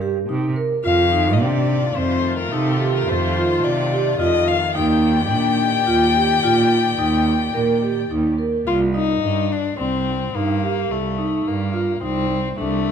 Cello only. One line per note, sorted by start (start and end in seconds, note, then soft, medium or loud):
0.00 0.18 G2 medium
0.29 0.51 C3 medium
0.85 1.42 F2 loud
1.40 1.85 C3 medium
1.97 2.41 F2 medium
2.52 2.97 C3 medium
3.07 3.52 F2 medium
3.63 4.08 C3 medium
4.19 4.41 F2 medium
4.75 5.32 D#2 loud
5.31 5.76 A#2 medium
5.87 6.32 D#2 medium
6.43 6.87 A#2 medium
6.99 7.43 D#2 medium
7.54 7.99 A#2 medium
8.10 8.33 D#2 medium
8.66 9.11 C2 medium
9.22 9.67 G2 medium
9.77 10.22 C2 medium
10.33 10.79 G2 medium
10.90 11.35 C2 medium
11.46 11.91 G2 medium
12.02 12.47 C2 medium
12.58 12.92 C2 medium